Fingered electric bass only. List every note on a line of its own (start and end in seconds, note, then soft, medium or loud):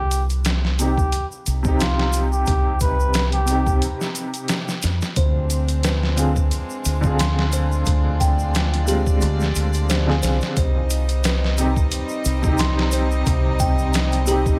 0.00 1.10 C2 medium
1.47 2.45 C2 medium
2.48 3.80 C2 medium
4.84 5.00 F2 medium
5.17 6.49 D2 medium
6.86 7.84 D2 medium
7.87 9.19 D2 medium
9.22 9.52 D2 loud
9.56 10.20 D2 medium
10.23 10.39 C2 medium
10.57 11.89 C2 medium
12.25 13.23 C2 medium
13.27 14.58 C2 loud